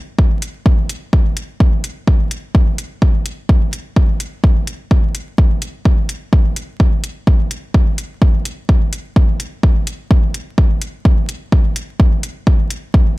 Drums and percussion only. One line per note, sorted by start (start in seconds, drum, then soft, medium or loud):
0.19 kick loud
0.42 closed hi-hat medium
0.66 kick loud
0.89 closed hi-hat medium
1.13 kick loud
1.37 closed hi-hat medium
1.60 kick loud
1.84 closed hi-hat medium
2.07 kick loud
2.31 closed hi-hat medium
2.55 kick loud
2.78 closed hi-hat medium
3.02 kick loud
3.26 closed hi-hat medium
3.49 kick loud
3.73 closed hi-hat medium
3.96 kick loud
4.20 closed hi-hat medium
4.44 kick loud
4.67 closed hi-hat medium
4.91 kick loud
5.15 closed hi-hat medium
5.38 kick loud
5.62 closed hi-hat medium
5.85 kick loud
6.09 closed hi-hat medium
6.33 kick loud
6.56 closed hi-hat medium
6.80 kick loud
7.04 closed hi-hat medium
7.27 kick loud
7.51 closed hi-hat medium
7.74 kick loud
7.98 closed hi-hat medium
8.22 kick loud
8.45 closed hi-hat medium
8.69 kick loud
8.93 closed hi-hat medium
9.16 kick loud
9.40 closed hi-hat medium
9.63 kick loud
9.87 closed hi-hat medium
10.11 kick loud
10.34 closed hi-hat medium
10.58 kick loud
10.81 closed hi-hat medium
11.05 kick loud
11.29 closed hi-hat medium
11.52 kick loud
11.76 closed hi-hat medium
12.00 kick loud
12.23 closed hi-hat medium
12.47 kick loud
12.70 closed hi-hat medium
12.94 kick loud